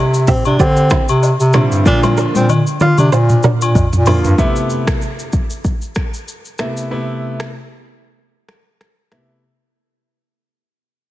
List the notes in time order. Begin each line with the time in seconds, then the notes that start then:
Already playing: C3
0.14 shaker
0.27 C4 G4 E5, kick, mid tom, open hi-hat, shaker
0.45 C3 D4, high agogo, shaker
0.59 D3 C4 G4 D5, kick, shaker
0.77 shaker
0.90 E4 C5, finger snap, kick, cross-stick, shaker
1.08 C3, high agogo, shaker
1.23 low woodblock, shaker
1.40 C3, shaker
1.53 D3 G3 C4 E4 F4 D5, finger snap, cross-stick, mid tom, high agogo, shaker
1.72 G2, shaker
1.86 A#2 D3 F3 A#3 D4 F4, kick, high tom, shaker
2.03 E4 C5, high tom, high agogo, shaker
2.17 D4 A#4, shaker
2.35 A#2 C4, high tom, shaker
2.49 mid tom, high agogo, low woodblock, shaker
2.67 shaker
2.80 F4 D5, mid tom, shaker
2.98 C3 D4, mid tom, high agogo, shaker
3.12 A#2 F4 C5, shaker
3.29 mid tom, shaker
3.43 D4 A#4, mid tom, shaker
3.61 A#2, high agogo, shaker
3.75 kick, floor tom, low woodblock, shaker
3.93 A#2, floor tom, shaker
4.06 D3 F3 A#3 E4 F4 C5, floor tom, open hi-hat, high agogo, shaker
4.24 G2, floor tom, shaker
4.38 C3 A3 B3 E4, kick, shaker
4.56 shaker
4.70 shaker
4.87 finger snap, kick, cross-stick, shaker
5.02 shaker
5.19 shaker
5.33 kick, shaker
5.50 shaker
5.65 kick, shaker
5.82 shaker
5.95 finger snap, kick, cross-stick, shaker
6.14 shaker
6.28 shaker
6.45 shaker
6.58 C3 A3 B3 E4, finger snap, cross-stick, shaker
6.77 shaker
6.91 C3 A3 B3 E4
7.40 finger snap, cross-stick
8.49 finger snap, cross-stick
8.81 finger snap, cross-stick
9.12 C3 A3 B3 E4, finger snap, cross-stick